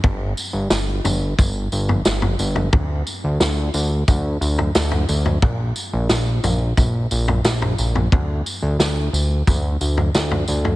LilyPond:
<<
  \new Staff \with { instrumentName = "Analog synth bass" } { \clef bass \time 4/4 \key bes \lydian \tempo 4 = 89 g,,8 r16 g,,16 g,,8 g,,8 g,,8 g,,8 g,,8 g,,8 | d,8 r16 d,16 d,8 d,8 d,8 d,8 d,8 d,8 | bes,,8 r16 bes,,16 bes,,8 bes,,8 bes,,8 bes,,8 bes,,8 bes,,8 | d,8 r16 d,16 d,8 d,8 d,8 d,8 d,8 d,8 | }
  \new DrumStaff \with { instrumentName = "Drums" } \drummode { \time 4/4 <bd tomfh>8 tamb8 <sn tamb>8 <tamb tomfh>8 <bd tamb tomfh>8 tamb16 tomfh16 <sn tamb>16 tomfh16 tamb16 tomfh16 | <bd tomfh>8 tamb8 <sn tamb>8 tamb8 <bd tamb tomfh>8 tamb16 tomfh16 <sn tamb>16 tomfh16 tamb16 tomfh16 | <bd tomfh>8 tamb8 <sn tamb>8 <tamb tomfh>8 <bd tamb tomfh>8 tamb16 tomfh16 <sn tamb>16 tomfh16 tamb16 tomfh16 | <bd tomfh>8 tamb8 <sn tamb>8 tamb8 <bd tamb tomfh>8 tamb16 tomfh16 <sn tamb>16 tomfh16 tamb16 tomfh16 | }
>>